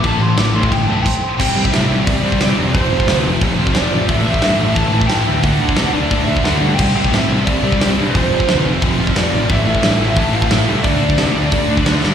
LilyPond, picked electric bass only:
\new Staff \with { instrumentName = "Picked electric bass" } { \clef bass \time 4/4 \key a \minor \tempo 4 = 178 a,,8 a,,8 a,,8 a,,8 g,,8 b,,8 r4 | c,8 c,8 a,8 c,8 c,8 c,8 c,8 f,8 | f,,8 f,,8 d,8 f,,8 f,,8 f,,8 f,,8 a,,8 | a,,8 a,,8 g,8 a,,8 a,,8 a,,8 a,,8 d,8 |
d,8 d,8 c8 d,8 d,8 d,8 d,8 g,8 | c,8 c,8 a,8 c,8 c,8 c,8 c,8 g,8 | f,,8 f,,8 d,8 f,,8 f,,8 f,,8 f,,8 a,,8 | a,,8 a,,8 g,8 a,,8 a,,8 a,,8 a,,8 c,8 |
d,8 d,8 c8 d,8 d,8 d,8 d,8 g,8 | }